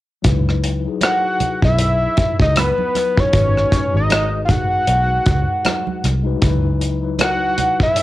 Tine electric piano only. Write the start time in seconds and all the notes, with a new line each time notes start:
0.22 F#3 D#4 E4
0.26 B4
0.84 F#3 D#4 E4
0.88 G#4
3.14 F#3 D#4 E4
3.19 B4
3.31 G#3 D#4 F#4
3.35 B4
3.92 G#3 D#4 F#4 G#4
6.23 G#3 D#4 F#4 B4
6.39 F#3 D#4 E4
6.43 B4
7.01 F#3 D#4 E4 B4